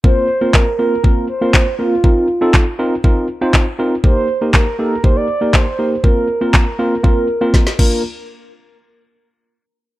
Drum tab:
CC |----------------|----------------|----------------|--------------x-|
CP |----x-------x---|----x-------x---|----x-------x---|----x-----------|
SD |----------------|----------------|----------------|------------oo--|
BD |o---o---o---o---|o---o---o---o---|o---o---o---o---|o---o---o---o-o-|

CC |----------------|
CP |----------------|
SD |----------------|
BD |----------------|